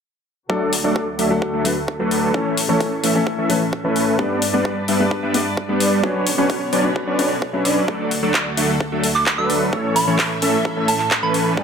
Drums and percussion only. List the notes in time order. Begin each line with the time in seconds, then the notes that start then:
0.50 kick
0.73 open hi-hat
0.96 kick
1.19 open hi-hat
1.42 kick
1.65 open hi-hat
1.88 kick
2.11 open hi-hat
2.34 kick
2.57 open hi-hat
2.80 kick, open hi-hat
3.04 open hi-hat
3.27 kick
3.50 open hi-hat
3.73 kick
3.96 open hi-hat
4.19 kick
4.42 open hi-hat
4.65 kick
4.88 open hi-hat
5.11 kick
5.34 open hi-hat
5.57 kick
5.80 open hi-hat
6.04 kick
6.27 open hi-hat
6.50 kick, open hi-hat
6.73 open hi-hat
6.96 kick
7.19 open hi-hat
7.42 kick
7.65 open hi-hat
7.88 kick
8.11 open hi-hat
8.34 kick, clap
8.57 open hi-hat
8.80 kick
9.04 open hi-hat
9.15 clap
9.26 kick, clap
9.50 open hi-hat
9.73 kick
9.96 open hi-hat
10.19 kick, clap, open hi-hat
10.42 open hi-hat
10.65 kick
10.88 open hi-hat
10.99 clap
11.11 kick, clap
11.34 open hi-hat
11.57 kick